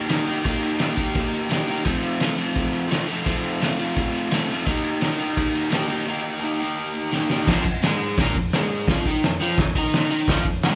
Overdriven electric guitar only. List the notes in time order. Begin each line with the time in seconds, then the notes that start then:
Already playing: A#3 D#4 G4
0.09 D#3 A#3 D#4
0.14 G4
0.26 D#4 G4
0.31 A#3
0.44 D#3 A#3 D#4
0.49 G4
0.79 D#3 A#3 D#4
0.83 G4
0.96 D#4 G4
1.01 A#3
1.49 D#3 A#3 D#4
1.53 G4
1.67 D#4 G4
1.72 A#3
1.85 F3 A3 C4
1.89 F4
2.20 F3 A3 C4
2.25 F4
2.36 C4 F4
2.41 A3
2.88 F3 A3 C4
2.93 F4
3.08 C4 F4
3.12 A3
3.24 F3 A3 C4
3.29 F4
3.61 F3 A3 C4
3.65 F4
3.79 A3 C4 F4
4.32 F3 A3 C4
4.37 F4
4.50 C4 F4
4.54 A3
4.66 D#3 A#3 D#4
4.71 G4
5.01 D#3 A#3 D#4
5.06 G4
5.18 D#4 G4
5.22 A#3
5.70 D#3 A#3 D#4
5.74 G4
5.88 D#4 G4
5.92 A#3
6.06 D#3 A#3 D#4
6.11 G4
6.41 D#3 A#3 D#4
6.45 G4
6.60 D#4 G4
6.64 A#3
7.12 D#3 A#3 D#4
7.17 G4
7.30 D#4 G4
7.34 A#3
7.50 F2 F3
7.66 F2
7.83 G#2 G#3
8.18 A#2 A#3
8.36 F2
8.54 G#2 G#3
8.90 F2 F3
9.07 D#3 D#4
9.24 F2
9.40 F2 F3
9.59 F2
9.76 D#3 D#4
10.11 D#3 D#4
10.29 F2 F3
10.46 F2
10.64 G#2 G#3